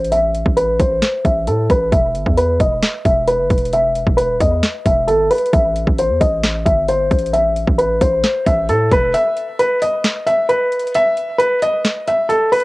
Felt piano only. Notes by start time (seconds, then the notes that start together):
0.12 E5
0.57 B4
0.80 C5
1.25 E5
1.48 A4
1.71 B4
1.92 E5
2.37 B4
2.60 D#5
3.05 E5
3.28 B4
3.73 E5
4.17 B4
4.41 D#5
4.86 E5
5.07 A4
5.31 B4
5.54 E5
5.99 C5
6.21 D#5
6.66 E5
6.89 C5
7.33 E5
7.78 B4
8.02 C5
8.47 E5
8.69 A4
8.93 B4
9.14 E5
9.59 B4
9.82 D#5
10.27 E5
10.49 B4
10.95 E5
11.38 B4
11.62 D#5
12.08 E5
12.29 A4
12.52 B4